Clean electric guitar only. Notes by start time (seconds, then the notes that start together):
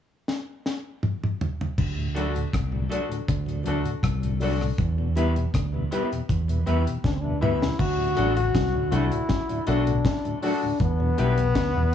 2.15 A3 D4 F#4 A4
2.90 A3 D4 F#4 A4
3.11 muted clean electric guitar stroke
3.66 A3 D4 F#4 A4
4.42 A3 D4 F#4 A4
5.16 B3 E4 G4 B4
5.92 B3 E4 G4 B4
6.67 B3 E4 G4 B4
7.42 B3 E4 G4 B4
8.17 A3 D4 F#4 A4
8.91 A3 D4 F#4 A4
9.12 muted clean electric guitar stroke
9.67 A3 D4 F#4 A4
10.43 A3 D4 F#4 A4
11.19 B3 E4 G4 B4